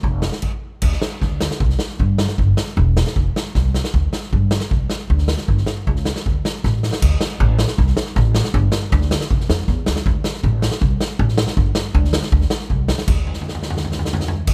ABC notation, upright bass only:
X:1
M:2/4
L:1/8
Q:1/4=157
K:Cmix
V:1 name="Upright bass" clef=bass
F,,,2 z2 | [K:Dm] D,, z D,,2 | C,, z G,,2 | G,,, z E,,,2 |
F,,, z C,,2 | D,, z G,,2 | C,, z D,,2 | G,,, z ^C,,2 |
D,, z A,,,2 | D,, z A,,,2 | C,, z A,,,2 | G,,, z D,,2 |
F,,, F,, E,, D,, | D,, z A,,,2 | C,, z A,,,2 | G,,, z D,,2 |
D,, z C,, D,, | D,,4- | D,,4 |]